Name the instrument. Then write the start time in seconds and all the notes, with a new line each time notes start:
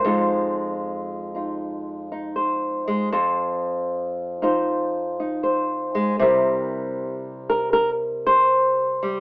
nylon-string guitar
Already playing: C5
0.05 F2 G#3 D#4 F4
1.35 D#4 F4
2.12 D#4
2.36 C5
2.88 G#3
3.12 F2 C5
4.42 D#4 F4 C5
5.20 D#4
5.43 C5
5.95 G#3
6.19 C3 G3 C4 E4 A#4
7.50 A#4
7.73 A#4
8.27 C5
9.03 G3